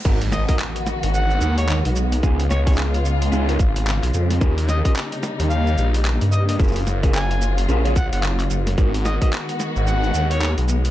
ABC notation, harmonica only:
X:1
M:4/4
L:1/16
Q:"Swing 16ths" 1/4=110
K:G#dor
V:1 name="Harmonica"
z2 d d z4 f3 c2 z3 | z2 c c z12 | z2 d d z4 e3 z3 d d | z4 g3 z3 f f z4 |
z2 d d z4 f3 c2 z3 |]